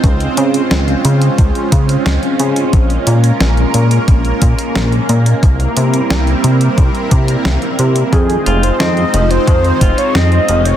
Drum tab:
HH |xxxxxxxxxxxxxxxx|xxxxxxxxxxxxxxxx|xxxxxxxxxxxxxxxx|xxxxxxxxxxxxxxxx|
SD |----o-------o---|----o-------o---|----o-------o---|----o-------o---|
BD |o-------o-o-----|o-------o-o-----|o-------o-o-----|o-------o-o-----|